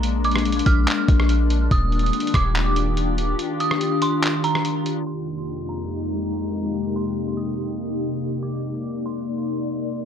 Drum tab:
HH |x-----x-x-x-x-x-x-x-----x-----x-----x-----x-----|x-----x-x-x-x-x-x-x-----x-----x-----x-----x-----|x-----x-----x-----x-----x-----x-----x-----x-----|------------------------------------------------|
CP |------------------------x-----------------------|------------------------x-----------------------|------------------------x-----------------------|------------------------------------------------|
SD |---------r-----------------------r--------------|------------------r-----------------------------|---------r-----------------------r--------------|------------------------------------------------|
BD |------------------o-----------o-----------------|o-----------------o-----------------------------|------------------------------------------------|------------------------------------------------|

HH |------------------------------------------------|------------------------------------------------|
CP |------------------------------------------------|------------------------------------------------|
SD |------------------------------------------------|------------------------------------------------|
BD |------------------------------------------------|------------------------------------------------|